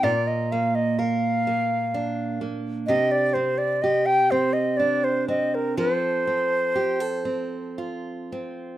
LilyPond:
<<
  \new Staff \with { instrumentName = "Flute" } { \time 3/4 \key c \dorian \tempo 4 = 62 d''16 ees''16 f''16 ees''16 f''4. r8 | ees''16 d''16 c''16 d''16 ees''16 g''16 c''16 ees''16 d''16 c''16 ees''16 bes'16 | c''2 r4 | }
  \new Staff \with { instrumentName = "Steel-string acoustic guitar" } { \time 3/4 \key c \dorian <bes, bes'>8 bes8 bes'8 bes8 d'8 bes8 | <c g'>8 c'8 g'8 c'8 d'8 c'8 | <f a'>8 c'8 g'16 a'16 c'8 f'8 c'8 | }
>>